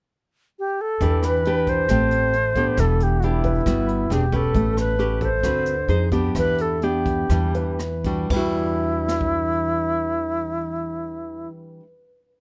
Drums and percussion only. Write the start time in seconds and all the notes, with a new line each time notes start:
1.01 kick, closed hi-hat
1.23 cross-stick, closed hi-hat
1.45 closed hi-hat
1.67 kick, closed hi-hat
1.88 kick, cross-stick, closed hi-hat
2.11 closed hi-hat
2.33 closed hi-hat
2.56 kick, closed hi-hat
2.77 kick, cross-stick, closed hi-hat
3.00 closed hi-hat
3.22 closed hi-hat
3.44 kick, closed hi-hat
3.66 kick, cross-stick, closed hi-hat
3.88 closed hi-hat
4.11 cross-stick, closed hi-hat
4.32 kick, closed hi-hat
4.55 kick, closed hi-hat
4.77 cross-stick, closed hi-hat
4.99 closed hi-hat
5.21 kick, closed hi-hat
5.43 kick, cross-stick, closed hi-hat
5.66 closed hi-hat
5.89 closed hi-hat
6.12 kick, closed hi-hat
6.35 kick, cross-stick, closed hi-hat
6.58 closed hi-hat
6.82 closed hi-hat
7.06 kick, closed hi-hat
7.29 kick, cross-stick, closed hi-hat
7.54 closed hi-hat
7.79 cross-stick, closed hi-hat
8.04 kick, closed hi-hat
8.30 kick, crash
9.08 snare
9.21 kick